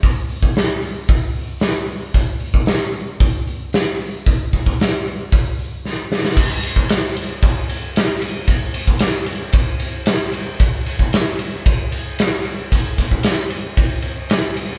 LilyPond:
\new DrumStaff \with { instrumentName = "Drums" } \drummode { \time 4/4 \tempo 4 = 114 <hho bd>8 hho16 bd16 <hho sn>8 hho8 <hho bd>8 hho8 <hho sn>8 hho8 | <hho bd>8 hho16 bd16 <hho sn>8 hho8 <hho bd>8 hho8 <hho sn>8 hho8 | <hho bd>8 <hho bd>16 bd16 <hho sn>8 hho8 <hho bd>8 hho8 sn8 sn16 sn16 | <cymc bd>8 cymr16 bd16 <cymr sn>8 cymr8 <bd cymr>8 cymr8 <cymr sn>8 cymr8 |
<bd cymr>8 cymr16 bd16 <cymr sn>8 cymr8 <bd cymr>8 cymr8 <cymr sn>8 cymr8 | <bd cymr>8 cymr16 bd16 <cymr sn>8 cymr8 <bd cymr>8 cymr8 <cymr sn>8 cymr8 | <bd cymr>8 <bd cymr>16 bd16 <cymr sn>8 cymr8 <bd cymr>8 cymr8 <cymr sn>8 cymr8 | }